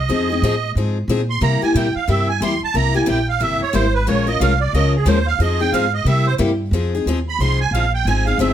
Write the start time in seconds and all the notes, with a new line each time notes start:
Already playing: D#5
0.09 F2 F3 C4 D#4 G#4
0.30 C4 D#4 G#4
0.42 A2 F3 C4 D#4 G#4
0.75 G#2 F3 C4 D#4 G#4
1.08 A#2 F3 C4 D#4 G#4
1.30 C6
1.41 C3 G3 A#3 E4 G4 A#5
1.62 A#3 E4 G4 G#5, muted upright bass stroke
1.74 A#2 C3 G3 A#3 E4 G4 G5
1.95 F5, muted upright bass stroke
2.08 G2 C3 G3 A#3 E4 G4 E5
2.29 G#5
2.41 E2 C3 G3 A#3 E4 G4 C6
2.62 A5, muted upright bass stroke
2.74 C2 C3 G3 A#3 E4 G4 A#5
2.94 A#3 E4 G4 G#5
3.06 A#1 C3 G3 A#3 E4 G4 G5
3.29 F5
3.40 G1 C3 G3 A#3 E4 G4 E5
3.61 C#5, muted upright bass stroke
3.73 G#1 C3 G3 A#3 E4 G4 C5
3.94 B4
4.07 A#1 F3 G#3 C#4 F4 A#4 C#5
4.27 C#4 F4 A#4 D#5
4.40 C2 F3 G#3 C#4 F4 A#4 F5
4.61 D5
4.73 C#2 F3 G#3 C#4 F4 A#4 D#5
4.95 G#4
5.05 D#2 F3 G#3 C#4 F4 A#4 C5
5.27 F5
5.38 F2 F3 C4 D#4 G#4 D#5
5.60 C4 D#4 G#4 G5
5.72 G#2 F3 C4 D#4 G#4 F5
5.94 D#5
6.04 C3 G3 A#3 E4 G4 E5
6.27 C5
6.38 G2 C3 G3 A#3 E4 G4
6.71 F2 F3 C4 D#4 G#4
6.95 C4 D#4 G#4
7.05 D#2 F3 C4 D#4 G#4
7.29 B5
7.38 C2 F3 C4 D#4 G#4 C6
7.61 G#5
7.71 A#1 F3 C4 D#4 F5
7.75 G#4
7.94 G5
8.05 G#1 F3 C4 D#4 G#4 G#5
8.26 C4 D#4 G#4 F5
8.38 G1 F3 C4 D#4 G#4 E5